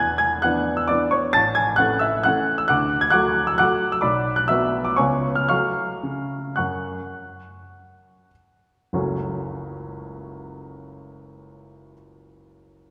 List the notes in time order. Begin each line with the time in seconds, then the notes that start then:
Already playing: G#5 G#6
0.00 E2
0.18 G#5 G#6
0.42 E3 B3 D4 F#5 F#6
0.77 E6
0.88 E3 B3 D4 D5 D6
1.11 C#5 C#6
1.33 A1 A5 A6
1.55 G#5 G#6
1.76 E3 A3 C#4 F#5 F#6
1.99 E5 E6
2.23 E3 A3 C#4 F#5 F#6
2.58 E6
2.68 D2 F#5 D6 F#6
3.01 G#6
3.10 F#3 A3 F#4 F#5 D6 F#6
3.47 E6
3.58 F#3 A3 F#4 F#5 D6 F#6
3.92 E6
4.01 B1 D5 B5 D6
4.36 F#6
4.48 F#3 B3 F#4 E5 E6
4.85 D6
4.96 C#2 C#3 B3 F4 C#5 G#5 C#6
5.35 F6
5.49 F#3 A3 F#4 F5 C#6 F6
6.03 C#3
6.56 F#2 F#5 C#6 F#6
8.93 F#1 C#2 F#3 A3 C#4 F#4